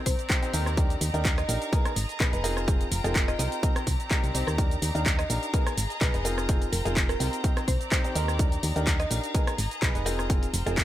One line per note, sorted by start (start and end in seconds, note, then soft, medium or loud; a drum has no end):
0.00 1.16 C4 medium
0.00 10.84 A#5 medium
0.06 0.15 C2 medium
0.06 0.73 C5 medium
0.06 kick medium
0.06 open hi-hat loud
0.06 shaker medium
0.11 1.16 G4 medium
0.11 1.16 D5 medium
0.19 closed hi-hat soft
0.19 shaker soft
0.30 0.41 C4 loud
0.30 0.41 D#4 medium
0.30 0.41 G4 medium
0.30 0.41 C5 loud
0.30 kick loud
0.30 clap loud
0.30 closed hi-hat medium
0.30 shaker soft
0.43 0.52 C4 medium
0.43 0.52 D#4 medium
0.43 0.52 G4 medium
0.43 0.52 C5 medium
0.43 closed hi-hat soft
0.43 shaker soft
0.53 0.96 D#2 medium
0.53 0.74 C4 loud
0.53 0.74 D#4 medium
0.53 0.74 G4 medium
0.53 0.74 A#4 loud
0.53 open hi-hat medium
0.53 shaker medium
0.66 cross-stick medium
0.66 shaker soft
0.77 0.94 D4 medium
0.77 2.01 D#4 medium
0.77 0.94 D#4 medium
0.77 0.94 G4 medium
0.77 0.94 A#4 loud
0.77 kick loud
0.77 closed hi-hat medium
0.77 shaker soft
0.90 closed hi-hat soft
0.90 shaker soft
1.01 1.10 D#2 loud
1.01 open hi-hat loud
1.01 shaker medium
1.14 1.44 D#2 medium
1.14 1.40 D4 medium
1.14 1.40 D#4 medium
1.14 1.40 G4 medium
1.14 1.40 A#4 loud
1.14 closed hi-hat soft
1.14 shaker soft
1.20 2.01 A#4 medium
1.20 2.01 F5 medium
1.25 kick loud
1.25 clap loud
1.25 closed hi-hat medium
1.25 shaker soft
1.38 1.51 D#5 medium
1.38 cross-stick medium
1.38 closed hi-hat soft
1.38 shaker soft
1.49 1.58 A#1 loud
1.49 1.69 D4 medium
1.49 1.69 D#4 medium
1.49 1.69 G4 medium
1.49 1.69 A#4 medium
1.49 open hi-hat loud
1.49 shaker medium
1.62 closed hi-hat soft
1.62 shaker soft
1.73 1.90 B3 loud
1.73 1.90 D#4 medium
1.73 1.90 G#4 medium
1.73 2.83 G#4 medium
1.73 1.90 A#4 loud
1.73 kick loud
1.73 closed hi-hat medium
1.73 shaker soft
1.85 cross-stick medium
1.85 closed hi-hat soft
1.85 shaker soft
1.96 2.06 G#1 loud
1.96 2.83 A#5 medium
1.96 open hi-hat loud
1.96 shaker medium
2.05 2.83 D#5 medium
2.09 closed hi-hat soft
2.09 shaker soft
2.20 2.29 B1 medium
2.20 2.31 B3 loud
2.20 2.31 D#4 medium
2.20 2.31 G#4 medium
2.20 2.31 B4 loud
2.20 kick loud
2.20 clap loud
2.20 closed hi-hat medium
2.20 shaker soft
2.33 2.87 F1 medium
2.33 2.42 B3 medium
2.33 2.42 D#4 medium
2.33 2.42 G#4 medium
2.33 2.42 B4 medium
2.33 closed hi-hat soft
2.33 shaker soft
2.44 2.64 C4 loud
2.44 2.64 D#4 medium
2.44 3.87 F4 medium
2.44 2.64 F4 medium
2.44 2.64 G#4 loud
2.44 2.59 A#4 medium
2.44 open hi-hat loud
2.44 shaker medium
2.57 cross-stick medium
2.57 shaker soft
2.68 2.85 C4 medium
2.68 2.85 D#4 medium
2.68 2.85 F4 medium
2.68 2.85 G#4 loud
2.68 3.87 C5 medium
2.68 kick loud
2.68 closed hi-hat medium
2.68 shaker soft
2.81 closed hi-hat soft
2.81 shaker soft
2.87 3.87 G5 medium
2.92 3.01 F1 loud
2.92 open hi-hat loud
2.92 shaker medium
3.04 3.34 F1 loud
3.04 3.31 C4 medium
3.04 3.31 D#4 medium
3.04 3.31 F4 medium
3.04 3.30 G#4 loud
3.04 3.18 A#4 medium
3.04 closed hi-hat soft
3.04 shaker soft
3.15 kick loud
3.15 clap loud
3.15 closed hi-hat medium
3.15 shaker soft
3.28 3.35 D#5 medium
3.28 cross-stick medium
3.28 closed hi-hat soft
3.28 shaker soft
3.39 3.48 C2 loud
3.39 4.97 C4 medium
3.39 3.60 C4 medium
3.39 3.60 D#4 medium
3.39 3.60 G4 medium
3.39 3.60 A#4 medium
3.39 3.47 D#5 medium
3.39 open hi-hat medium
3.39 shaker medium
3.52 closed hi-hat soft
3.52 shaker soft
3.63 3.80 C4 loud
3.63 3.80 D#4 medium
3.63 3.80 G4 medium
3.63 3.80 A#4 loud
3.63 kick loud
3.63 closed hi-hat medium
3.63 shaker soft
3.76 4.97 G4 medium
3.76 cross-stick medium
3.76 closed hi-hat soft
3.76 shaker soft
3.87 3.96 C2 medium
3.87 kick medium
3.87 open hi-hat loud
3.87 shaker medium
3.93 4.97 D5 medium
4.00 closed hi-hat soft
4.00 shaker soft
4.11 4.32 C4 medium
4.11 4.32 D#4 medium
4.11 4.32 G4 medium
4.11 4.32 A#4 loud
4.11 kick loud
4.11 clap loud
4.11 closed hi-hat medium
4.11 shaker soft
4.24 4.31 C2 loud
4.24 closed hi-hat soft
4.24 shaker soft
4.34 4.44 C2 medium
4.34 4.55 C4 medium
4.34 4.55 D#4 medium
4.34 4.55 G4 medium
4.34 4.55 C5 medium
4.34 open hi-hat loud
4.34 shaker medium
4.47 4.77 D#2 medium
4.47 4.63 A#4 medium
4.47 cross-stick medium
4.47 shaker soft
4.58 4.75 D4 medium
4.58 5.82 D#4 medium
4.58 4.75 D#4 medium
4.58 4.75 G4 medium
4.58 4.75 A#4 loud
4.58 kick loud
4.58 closed hi-hat medium
4.58 shaker soft
4.71 closed hi-hat soft
4.71 shaker soft
4.82 4.91 D#2 loud
4.82 open hi-hat loud
4.82 shaker medium
4.90 5.82 F5 medium
4.95 5.25 D#2 loud
4.95 5.21 D4 loud
4.95 5.21 D#4 medium
4.95 5.21 G4 medium
4.95 5.21 A#4 loud
4.95 closed hi-hat soft
4.95 shaker soft
5.01 5.82 A#4 medium
5.06 kick loud
5.06 clap loud
5.06 closed hi-hat medium
5.06 shaker soft
5.19 5.32 D#5 loud
5.19 cross-stick medium
5.19 closed hi-hat soft
5.19 shaker soft
5.30 5.39 A#1 loud
5.30 5.50 D4 medium
5.30 5.50 D#4 medium
5.30 5.50 G4 medium
5.30 5.50 A#4 medium
5.30 open hi-hat medium
5.30 shaker medium
5.43 closed hi-hat soft
5.43 shaker soft
5.53 5.71 B3 loud
5.53 5.70 D#4 medium
5.53 5.70 G#4 medium
5.53 6.64 G#4 medium
5.53 5.71 A#4 loud
5.53 kick loud
5.53 closed hi-hat medium
5.53 shaker soft
5.67 cross-stick medium
5.67 closed hi-hat soft
5.67 shaker soft
5.77 5.87 G#1 loud
5.77 open hi-hat loud
5.77 shaker medium
5.86 6.64 D#5 medium
5.86 6.64 A#5 medium
5.90 closed hi-hat soft
5.90 shaker soft
6.01 6.10 B1 medium
6.01 6.12 B3 medium
6.01 6.12 D#4 medium
6.01 6.12 G#4 medium
6.01 6.12 B4 loud
6.01 kick loud
6.01 clap loud
6.01 closed hi-hat medium
6.01 shaker soft
6.14 6.68 F1 medium
6.14 6.23 B3 medium
6.14 6.23 D#4 medium
6.14 6.23 G#4 medium
6.14 6.23 B4 medium
6.14 closed hi-hat soft
6.14 shaker soft
6.25 6.45 C4 medium
6.25 6.45 D#4 medium
6.25 7.68 F4 medium
6.25 6.45 F4 medium
6.25 6.45 G#4 loud
6.25 6.40 A#4 medium
6.25 open hi-hat medium
6.25 shaker medium
6.38 cross-stick medium
6.38 shaker soft
6.49 6.66 C4 medium
6.49 6.66 D#4 medium
6.49 6.66 F4 medium
6.49 6.66 G#4 loud
6.49 kick loud
6.49 closed hi-hat medium
6.49 shaker soft
6.62 closed hi-hat soft
6.62 shaker soft
6.68 7.68 C5 medium
6.68 7.68 G5 medium
6.72 6.82 F1 loud
6.72 6.81 A#4 medium
6.72 open hi-hat loud
6.72 shaker medium
6.85 7.15 F1 medium
6.85 7.11 C4 loud
6.85 7.11 D#4 medium
6.85 7.11 F4 medium
6.85 7.11 G#4 loud
6.85 6.92 A#4 medium
6.85 closed hi-hat soft
6.85 shaker soft
6.96 kick loud
6.96 clap loud
6.96 closed hi-hat medium
6.96 shaker soft
7.09 7.25 A#4 medium
7.09 cross-stick medium
7.09 closed hi-hat soft
7.09 shaker soft
7.20 7.29 C2 loud
7.20 8.78 C4 medium
7.20 7.41 C4 medium
7.20 7.41 D#4 medium
7.20 7.41 G4 medium
7.20 7.41 A#4 medium
7.20 open hi-hat medium
7.20 shaker medium
7.33 closed hi-hat soft
7.33 shaker soft
7.44 7.61 C4 loud
7.44 7.61 D#4 medium
7.44 7.61 G4 medium
7.44 7.61 A#4 loud
7.44 kick loud
7.44 closed hi-hat loud
7.44 shaker medium
7.57 8.78 G4 medium
7.57 cross-stick medium
7.57 closed hi-hat soft
7.57 shaker soft
7.68 7.77 C2 medium
7.68 8.35 C5 loud
7.68 kick medium
7.68 open hi-hat loud
7.68 shaker medium
7.74 8.78 D5 medium
7.81 closed hi-hat soft
7.81 shaker soft
7.92 8.03 C4 medium
7.92 8.03 D#4 medium
7.92 8.03 G4 medium
7.92 8.03 C5 loud
7.92 kick loud
7.92 clap loud
7.92 closed hi-hat medium
7.92 shaker soft
8.04 8.14 C4 medium
8.04 8.14 D#4 medium
8.04 8.14 G4 medium
8.04 8.14 C5 medium
8.04 closed hi-hat soft
8.04 shaker soft
8.15 8.58 D#2 medium
8.15 8.36 C4 loud
8.15 8.36 D#4 medium
8.15 8.36 G4 medium
8.15 8.36 A#4 loud
8.15 open hi-hat medium
8.15 shaker medium
8.28 cross-stick medium
8.28 shaker soft
8.39 8.56 D4 medium
8.39 9.63 D#4 medium
8.39 8.56 D#4 medium
8.39 8.56 G4 medium
8.39 8.56 A#4 loud
8.39 kick loud
8.39 closed hi-hat loud
8.39 shaker soft
8.52 closed hi-hat soft
8.52 shaker soft
8.63 8.72 D#2 loud
8.63 open hi-hat loud
8.63 shaker medium
8.76 9.06 D#2 loud
8.76 9.02 D4 loud
8.76 9.02 D#4 medium
8.76 9.02 G4 medium
8.76 9.02 A#4 loud
8.76 closed hi-hat soft
8.76 shaker soft
8.82 9.63 A#4 medium
8.82 9.63 F5 medium
8.87 kick loud
8.87 clap loud
8.87 closed hi-hat loud
8.87 shaker soft
9.00 9.13 D#5 medium
9.00 cross-stick medium
9.00 closed hi-hat soft
9.00 shaker soft
9.11 9.20 A#1 loud
9.11 9.31 D4 medium
9.11 9.31 D#4 medium
9.11 9.31 G4 medium
9.11 9.31 A#4 medium
9.11 open hi-hat medium
9.11 shaker medium
9.24 closed hi-hat soft
9.24 shaker soft
9.34 9.51 B3 loud
9.34 9.51 D#4 medium
9.34 10.45 G#4 medium
9.34 9.51 G#4 medium
9.34 9.51 A#4 loud
9.34 kick loud
9.34 closed hi-hat loud
9.34 shaker soft
9.47 cross-stick medium
9.47 closed hi-hat soft
9.47 shaker soft
9.58 9.68 G#1 loud
9.58 10.45 D#5 medium
9.58 open hi-hat loud
9.58 shaker medium
9.67 10.45 A#5 medium
9.67 closed hi-hat soft
9.72 shaker soft
9.82 9.91 B1 medium
9.82 9.93 B3 loud
9.82 9.93 D#4 medium
9.82 9.93 G#4 medium
9.82 9.93 B4 loud
9.82 kick loud
9.82 clap loud
9.82 closed hi-hat medium
9.82 shaker soft
9.95 10.49 F1 medium
9.95 10.04 B3 medium
9.95 10.04 D#4 medium
9.95 10.04 G#4 medium
9.95 10.04 B4 medium
9.95 closed hi-hat soft
9.95 shaker soft
10.06 10.26 C4 loud
10.06 10.26 D#4 medium
10.06 10.26 F4 medium
10.06 10.84 F4 medium
10.06 10.26 G#4 loud
10.06 10.21 A#4 medium
10.06 open hi-hat medium
10.06 shaker medium
10.19 cross-stick medium
10.19 shaker soft
10.26 10.47 C4 medium
10.26 10.47 D#4 medium
10.26 10.47 F4 medium
10.26 10.47 G#4 loud
10.26 10.84 C5 medium
10.26 kick loud
10.26 closed hi-hat loud
10.30 shaker soft
10.43 closed hi-hat soft
10.43 shaker soft
10.49 10.84 G5 medium
10.54 10.63 F1 loud
10.54 open hi-hat loud
10.54 shaker medium
10.66 10.84 F1 loud
10.66 10.84 C4 medium
10.66 10.84 D#4 medium
10.66 10.84 F4 medium
10.66 10.84 G#4 loud
10.66 10.80 A#4 medium
10.66 closed hi-hat soft
10.66 shaker soft
10.77 kick loud
10.77 clap loud
10.77 closed hi-hat loud
10.77 shaker soft